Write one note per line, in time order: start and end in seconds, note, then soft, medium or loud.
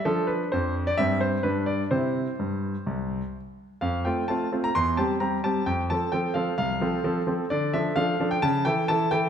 0.05 0.42 F3 medium
0.05 0.93 D4 soft
0.05 0.28 A4 medium
0.27 0.51 B4 medium
0.52 0.89 F2 medium
0.52 0.72 C5 medium
0.87 0.98 D5 medium
0.98 1.35 G2 medium
0.98 1.41 C4 soft
0.98 1.20 E5 medium
1.21 1.41 C5 medium
1.43 1.82 G2 soft
1.43 1.88 D4 soft
1.43 1.67 B4 medium
1.66 1.81 D5 medium
1.91 2.25 C3 soft
1.91 2.30 C4 soft
1.91 2.30 E4 soft
1.91 3.35 C5 medium
2.39 2.73 G2 soft
2.86 3.20 C2 soft
3.81 4.05 F2 soft
3.81 4.05 F5 medium
4.05 4.22 A3 soft
4.05 4.23 C4 soft
4.05 4.23 F4 soft
4.05 4.26 G5 medium
4.28 4.46 A3 soft
4.28 4.46 C4 soft
4.28 4.46 F4 soft
4.28 4.49 A5 medium
4.52 4.69 A3 soft
4.52 4.69 C4 soft
4.52 4.69 F4 soft
4.64 4.75 A#5 medium
4.75 4.98 E2 medium
4.75 4.98 C6 medium
4.97 5.15 G3 soft
4.97 5.15 C4 soft
4.97 5.15 G4 soft
4.97 5.12 A5 medium
5.20 5.37 G3 soft
5.20 5.38 C4 soft
5.20 5.38 G4 soft
5.20 5.44 A#5 medium
5.44 5.61 G3 soft
5.44 5.61 C4 soft
5.44 5.61 G4 soft
5.44 5.67 A5 medium
5.66 5.89 F2 soft
5.66 5.80 G5 medium
5.90 6.07 F3 soft
5.90 6.07 C4 soft
5.90 6.08 A4 soft
5.90 6.11 A5 medium
6.12 6.29 F3 soft
6.12 6.30 C4 soft
6.12 6.30 A4 soft
6.12 6.33 G5 medium
6.34 6.52 F3 soft
6.34 6.52 C4 soft
6.34 6.52 A4 soft
6.34 6.56 F5 medium
6.58 6.81 C2 soft
6.58 7.27 F5 medium
6.81 6.98 F3 soft
6.81 6.98 C4 soft
6.81 6.98 A4 soft
7.04 7.21 F3 soft
7.04 7.21 C4 soft
7.04 7.21 A4 soft
7.27 7.44 F3 soft
7.27 7.44 C4 soft
7.27 7.44 A4 soft
7.50 7.73 D3 medium
7.50 7.74 D5 medium
7.73 7.90 F3 soft
7.73 7.90 D4 soft
7.73 7.91 A4 soft
7.73 7.94 E5 medium
7.96 8.13 F3 soft
7.96 8.13 D4 soft
7.96 8.13 A4 soft
7.96 8.27 F5 medium
8.20 8.36 F3 soft
8.20 8.37 D4 soft
8.20 8.37 A4 soft
8.31 8.42 G5 medium
8.42 8.65 C#3 medium
8.42 8.63 A5 medium
8.65 8.82 E3 soft
8.65 8.82 E4 soft
8.65 8.83 A4 soft
8.65 8.88 G5 medium
8.88 9.05 E3 soft
8.88 9.05 E4 soft
8.88 9.06 A4 medium
8.88 9.11 A5 medium
9.11 9.28 E3 soft
9.11 9.28 E4 soft
9.11 9.28 A4 soft
9.11 9.29 G5 medium